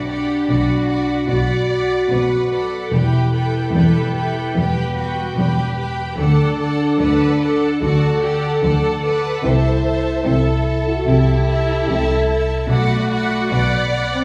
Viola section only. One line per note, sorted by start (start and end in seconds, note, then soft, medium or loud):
0.08 0.47 D5 soft
0.49 0.88 D5 soft
0.89 1.28 D5 soft
1.29 1.69 D5 soft
1.71 2.09 D5 soft
2.11 2.50 D5 soft
2.51 2.91 D5 soft
2.92 3.32 G4 soft
2.92 3.32 B4 soft
3.33 3.73 G4 soft
3.33 3.73 B4 soft
3.74 4.13 G4 soft
3.74 4.13 B4 soft
4.14 4.53 G4 soft
4.14 4.53 B4 soft
4.54 4.95 G4 soft
4.54 4.95 B4 soft
4.96 5.36 G3 soft
4.96 5.35 B4 soft
5.36 5.76 G4 soft
5.36 5.76 B4 soft
5.77 6.17 G4 soft
5.77 6.17 B4 soft
6.18 6.58 A4 soft
6.18 6.57 D5 soft
6.59 6.97 A4 soft
6.59 6.98 D5 soft
6.99 7.39 A4 soft
6.99 7.38 D5 soft
7.39 7.80 A4 soft
7.39 7.80 D5 soft
7.81 8.20 A4 soft
7.81 8.21 D5 soft
8.22 8.61 A4 soft
8.22 8.61 D5 soft
8.62 9.02 A4 soft
8.62 9.02 D5 soft
9.04 9.43 A4 soft
9.04 9.43 D5 soft
9.44 9.83 A4 soft
9.84 10.24 A4 soft
10.25 10.64 A4 medium
10.65 11.05 A4 soft
11.07 11.46 A4 soft
11.47 11.87 A4 soft
11.88 12.27 A4 soft
12.28 12.69 A4 soft
12.69 13.09 D5 medium
12.69 13.09 F#5 soft
13.11 13.49 D5 soft
13.11 13.49 F#5 soft
13.50 13.90 D5 soft
13.50 13.90 F#5 soft
13.91 14.24 D5 soft
13.91 14.24 F#5 soft